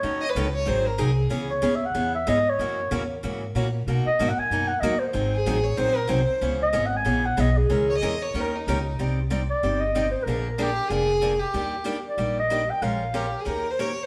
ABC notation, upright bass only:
X:1
M:4/4
L:1/8
Q:"Swing" 1/4=188
K:C#dor
V:1 name="Upright bass" clef=bass
D,,2 C,,2 G,,,2 ^B,,,2 | z2 D,,2 E,,2 G,,2 | F,,2 E,,2 G,,2 A,,2 | B,, z G,, z F,,2 D,,2 |
G,,,2 =A,,,2 ^A,,,2 ^B,,, z | C,,2 G,,,2 A,,,2 B,,,2 | C,,2 E,,2 D,,2 C,,2 | [K:Cm] C,,4 G,,,4 |
B,,,4 F,,,4 | E,,4 B,,,4 | B,,,4 E,,4 |]